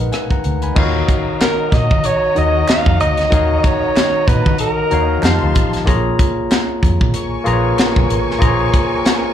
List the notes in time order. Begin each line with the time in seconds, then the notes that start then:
Already playing: G#3 D#4 A#4 B4 F#5
0.00 A#1
0.12 F5 G#5, cross-stick, closed hi-hat
0.30 F#5 A#5, kick, closed hi-hat
0.44 D2, closed hi-hat
0.62 G#5 B5, closed hi-hat
0.75 D#2 D#3 D#4 F4 F#4 C#5 D#5 F5 A#5, kick, crash
0.83 F#4
1.08 kick, closed hi-hat
1.41 A#4, snare, clap, closed hi-hat
1.72 A#2 D#5, kick, snare, closed hi-hat
1.91 D#3, kick
2.04 C#5, closed hi-hat
2.35 D#2 D#3 D#4 F#4 C#5 D#5, closed hi-hat
2.68 F5, snare, clap, closed hi-hat
2.86 F2, kick
3.00 D2 D#5, closed hi-hat
3.17 snare, closed hi-hat
3.30 D#2 D#3 D#4 F#4 C#5 F5, kick, closed hi-hat
3.59 D#5
3.64 C#5, kick, closed hi-hat
3.96 snare, clap, closed hi-hat
4.28 A#2 B4, kick, closed hi-hat
4.46 D#3, kick
4.58 A#4, closed hi-hat
4.90 D#2 D#3 D#4 F#4 C#5 F5, closed hi-hat
5.21 F2 F3 D#4 G4 F5 A5 C6, snare, clap, closed hi-hat
5.42 D2
5.55 A1, kick, closed hi-hat
5.73 snare, closed hi-hat
5.85 A#1 A#3 F4 G#4 C#5 A#5, kick, closed hi-hat
6.19 kick, closed hi-hat
6.51 snare, clap, closed hi-hat
6.83 F2, kick, closed hi-hat
7.01 A#2, kick
7.13 A#4 G#5 C#6, closed hi-hat
7.44 A#1 A#3 F4 G#4 B4 A#5, closed hi-hat
7.53 C#5
7.78 snare, clap, closed hi-hat
7.96 B1, kick
8.10 A1, closed hi-hat
8.31 snare
8.38 A#1 A#3 F4 G#4 C5 A#5, kick, closed hi-hat
8.48 C#5
8.74 kick, closed hi-hat
9.06 snare, clap, closed hi-hat